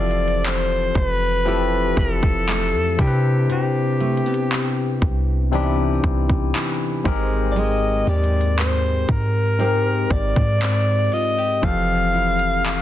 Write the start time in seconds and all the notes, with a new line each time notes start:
Already playing: F1 E3 F3 C4 E4 G4 A4 D5
0.11 closed hi-hat
0.28 closed hi-hat
0.45 C5, clap, closed hi-hat
0.95 F1 B4, kick, closed hi-hat
1.45 F3 A3 C4 E4 G4 A4, closed hi-hat
1.97 F1 A4, kick
2.23 kick
2.48 A3, clap, closed hi-hat
2.73 F2
2.97 C3 C4 D4 E4 G4 A#4, kick, open hi-hat
3.07 B4
3.49 C3 G4, closed hi-hat
4.01 A3, closed hi-hat
4.17 closed hi-hat
4.26 B3
4.34 closed hi-hat
4.51 clap, closed hi-hat
5.02 C2, kick, closed hi-hat
5.51 C3 E3 B3 C4 D4 D#4 G4, closed hi-hat
5.61 E4
6.04 C2, kick
6.29 kick
6.55 E3, clap, closed hi-hat
7.04 G#1 G#2 G#3 C4 G4 A#4, kick, open hi-hat
7.51 D5
7.56 G#3 D#5, closed hi-hat
8.07 D#2 G4 D5, closed hi-hat
8.24 closed hi-hat
8.41 closed hi-hat
8.58 C5, clap, closed hi-hat
9.09 G#2 A#4, kick, closed hi-hat
9.58 G#2 G#3 C4 G4 A#4, closed hi-hat
10.10 G#1 D5, kick
10.36 G#2, kick
10.62 C4, clap, closed hi-hat
11.12 F4 D#5, open hi-hat
11.38 G4
11.62 F1 E3 F3 C4 G4 A4 F5, kick, closed hi-hat
12.14 E4, closed hi-hat
12.39 closed hi-hat
12.65 clap, closed hi-hat